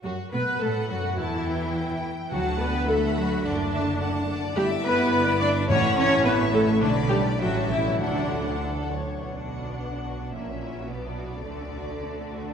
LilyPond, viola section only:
\new Staff \with { instrumentName = "Viola section" } { \time 2/4 \key d \major \tempo 4 = 106 fis'8 b'8 a'8 fis'8 | e'4. r8 | fis'8 b'8 a'8 fis'8 | d'4. r8 |
g'8 b'4 d''8 | cis''8 cis''8 b'8 a'8 | d'8 g'8 fis'8 e'8 | d'4 r4 |
\key b \minor d'2 | cis'4 b4 | a2 | }